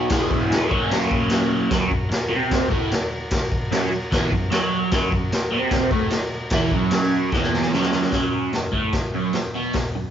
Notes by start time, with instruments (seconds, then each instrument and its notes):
Already playing: transistor combo organ D#5
0.09 overdriven electric guitar E2 B2 E3 G#3 B3 G#4, transistor combo organ G#4 B4, kick, snare, crash
0.14 transistor combo organ E5
0.31 kick
0.52 snare, crash
0.69 overdriven electric guitar F#3 A#3 C#4 F#4, transistor combo organ F#4 A#4, kick
0.73 transistor combo organ C#5
0.91 snare, crash
1.11 kick
1.30 snare, crash
1.70 overdriven electric guitar F#2 F#3, transistor combo organ F#4 A#4, kick, snare, crash
1.89 overdriven electric guitar F#2, kick
2.10 muted overdriven electric guitar stroke, snare, crash
2.29 overdriven electric guitar C3 C4
2.51 kick, snare, crash
2.70 overdriven electric guitar A2 A3, kick
2.92 snare, crash
3.31 kick, snare, crash
3.52 kick
3.71 overdriven electric guitar F#2 F#3, snare, crash
3.91 muted overdriven electric guitar stroke
4.11 overdriven electric guitar E2 E3, kick, snare, crash
4.32 overdriven electric guitar F#2, kick
4.51 overdriven electric guitar F#3 F#4, snare, crash
4.91 overdriven electric guitar F#2 F#3, transistor combo organ F#4 A#4, kick, snare, crash
5.11 overdriven electric guitar F#2, kick
5.31 muted overdriven electric guitar stroke, snare, crash
5.51 overdriven electric guitar C3 C4
5.71 kick, snare, crash
5.91 overdriven electric guitar A2 A3, kick
6.11 snare, crash
6.50 overdriven electric guitar E3 E4, kick, snare, crash
6.71 overdriven electric guitar F#2 F#3, kick
6.91 snare, crash
7.32 overdriven electric guitar E2 E3, kick, snare
7.43 snare
7.54 snare
7.62 snare
7.73 overdriven electric guitar F#2 F#3, snare
7.82 snare
7.92 snare
8.02 snare
8.11 overdriven electric guitar F#2 F#3, kick, snare, open hi-hat
8.53 overdriven electric guitar F#2, snare, open hi-hat
8.72 overdriven electric guitar A2 A3, kick
8.92 muted overdriven electric guitar stroke, kick, snare, open hi-hat
9.14 overdriven electric guitar F#2 F#3
9.33 overdriven electric guitar F#2, snare, open hi-hat
9.55 overdriven electric guitar B2 B3
9.73 kick, snare, open hi-hat
9.95 overdriven electric guitar F#2